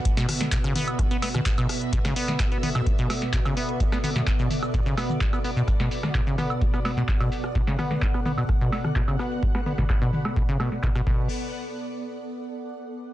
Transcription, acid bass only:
X:1
M:4/4
L:1/16
Q:1/4=128
K:Bm
V:1 name="Acid bass" clef=bass
z B,, z2 B,, C, B,2 E, B, B, B,, z B,, z2 | B,, C, B,2 E, B, B, B,, z B,, z2 B,, C, B,2 | E, B, B, B,, z B,, z2 B,, C, B,2 E, B, B, B,, | z B,, z2 B,, C, B,2 E, B, B, B,, z B,, z2 |
B,, C, B,2 E, B, B, B,, z B,, z2 B,, C, B,2 | E, B, B, B,, z B,, z2 B,, C, B,, z B,, B,, B,,2 | z16 |]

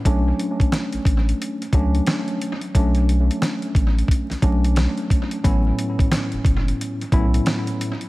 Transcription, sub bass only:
X:1
M:4/4
L:1/16
Q:"Swing 16ths" 1/4=89
K:Bdor
V:1 name="Sub bass" clef=bass
B,,,2 z3 A,,, A,,,2 z2 C,,2 z4 | B,,,4 z2 A,,,2 z B,,, B,,,3 z3 | A,,,2 z3 F,,, F,,,2 z2 B,,,2 z4 |]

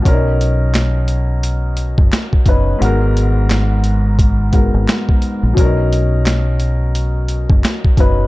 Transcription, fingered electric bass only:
X:1
M:4/4
L:1/16
Q:"Swing 16ths" 1/4=87
K:B
V:1 name="Fingered electric bass" clef=bass
B,,,8- B,,,3 F,,, z2 F,,,2 | G,,,8- G,,,3 G,,, z3 A,,, | B,,,8- B,,,3 F,,, z2 F,,,2 |]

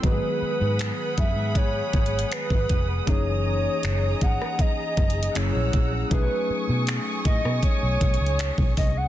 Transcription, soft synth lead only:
X:1
M:4/4
L:1/16
Q:1/4=79
K:F#dor
V:1 name="Soft synth lead"
B6 e2 c4 B3 z | c6 f2 d4 c3 z | B4 z2 d2 c6 d f |]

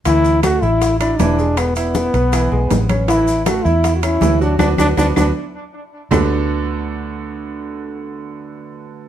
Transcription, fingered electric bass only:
X:1
M:4/4
L:1/8
Q:1/4=158
K:D
V:1 name="Fingered electric bass" clef=bass
D,,3 A,,,3 E,,,2- | E,,,3 B,,,2 B,,, A,,,2- | A,,,3 E,,3 D,,2 | D,, D,, D,, D,, z4 |
D,,8- | D,,8 |]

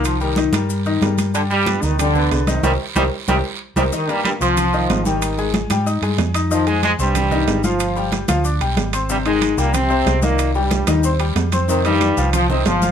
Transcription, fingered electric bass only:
X:1
M:4/4
L:1/8
Q:1/4=186
K:Cm
V:1 name="Fingered electric bass" clef=bass
C,,3 G,,3 G,,2- | G,,3 D,,3 C,,2 | C,, z C,, z C,, z2 C,, | z3 C,,3 A,,,2- |
A,,,3 A,,2 G,, F,,2- | F,,3 C,,3 G,,,2- | G,,,3 D,,2 =B,,, A,,,2- | A,,,3 C,,3 C,,2- |
C,,3 E,,3 F,,2- | F,,3 C,,3 G,,,2 |]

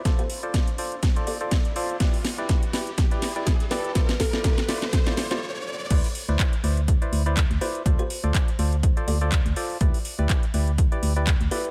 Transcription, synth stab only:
X:1
M:4/4
L:1/16
Q:"Swing 16ths" 1/4=123
K:Flyd
V:1 name="Synth stab"
[FAcd] z2 [FAcd]2 z [FAcd] z2 [FAcd]2 [FAcd] z2 [FAcd]2 | [EGBd] z2 [EGBd]2 z [EGBd] z2 [EGBd]2 [EGBd] z2 [EGBd]2 | [EFcd] z2 [EFcd]2 z [EFcd] z2 [EFcd]2 [EFcd] z4 | [EBcd] z2 [EBcd]2 z [EBcd] z2 [EBcd]2 [EBcd] z2 [EBcd]2 |
[FAcd] z2 [FAcd]2 z [FAcd] z2 [FAcd]2 [FAcd] z2 [FAcd]2 | [EGBd] z2 [EGBd]2 z [EGBd] z2 [EGBd]2 [EGBd] z2 [EGBd]2 |]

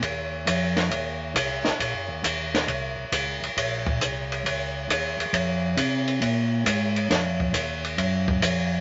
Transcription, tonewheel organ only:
X:1
M:4/4
L:1/8
Q:"Swing" 1/4=136
K:Ebdor
V:1 name="Tonewheel organ" clef=bass
E,,2 F,,2 E,,2 C,, C,, | (3B,,, G,,, E,, E,,2 C,, C,, D,, D,, | B,,,2 C,,2 D,,2 E,, E,, | F,,2 C,2 B,,2 A,,2 |
F,,2 E,,2 G,,2 F,,2 |]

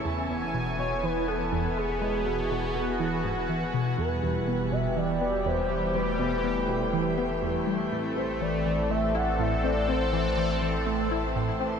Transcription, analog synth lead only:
X:1
M:4/4
L:1/8
Q:1/4=122
K:Emix
V:1 name="Analog synth lead"
z3 c B A2 G- | G6- G z | [K:Em] B3 e d2 c2 | B B6 z |
z c d2 e f e d | c4 z4 |]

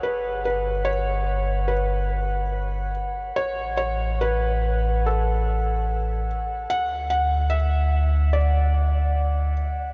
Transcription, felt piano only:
X:1
M:4/4
L:1/8
Q:1/4=72
K:A
V:1 name="Felt piano"
B B c2 B3 z | c c B2 A3 z | f f e2 d3 z |]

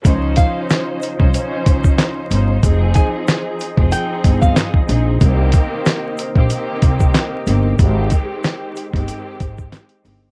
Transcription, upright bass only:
X:1
M:4/4
L:1/16
Q:"Swing 16ths" 1/4=93
K:Dblyd
V:1 name="Upright bass" clef=bass
D,,2 z4 z C,, z2 D,,2 z2 G,,,2 | F,,,2 z4 z F,,, z2 G,,,2 z2 B,,,2 | C,,2 z4 z B,,, z2 C,,2 z2 G,,,2 | A,,,2 z4 z G,,, z2 A,,,2 z2 G,,,2 |]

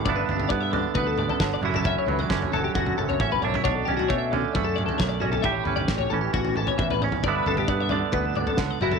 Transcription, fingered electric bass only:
X:1
M:4/4
L:1/8
Q:1/4=134
K:Glyd
V:1 name="Fingered electric bass" clef=bass
G,,, G,,, G,,2 D,,2 G,,, F,,,- | F,,, C,, F,,, F,,, F,,, F,,, A,,, B,,, | B,,, B,,, B,,2 F,,2 B,,,2 | A,,, G,,, A,,, A,,, A,,,2 A,,,2 |
G,,, G,,, G,,2 D,,2 C,, F,,, |]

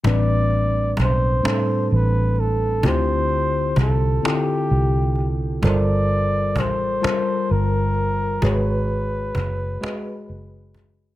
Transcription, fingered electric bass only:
X:1
M:6/8
L:1/8
Q:3/8=43
K:Gdor
V:1 name="Fingered electric bass" clef=bass
A,,,2 =B,,, z A,,,2 | D,,2 C,, z C,,2 | G,,,2 A,,, z G,,,2 | ^G,,,2 ^F,,, z F,,,2 |]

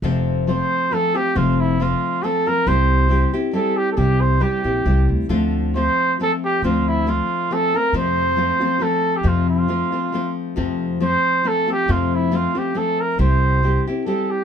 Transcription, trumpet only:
X:1
M:3/4
L:1/16
Q:"Swing" 1/4=137
K:F
V:1 name="Trumpet"
z4 c4 A2 G2 | F2 E2 F4 A2 B2 | c6 z2 A2 G3/2 A/2 | G2 c2 G6 z2 |
z4 c4 A2 G2 | F2 E2 F4 A2 B2 | c8 A3 G | F2 F8 z2 |
z4 c4 A2 G2 | F2 E2 F2 G2 A2 B2 | c6 z2 A2 G2 |]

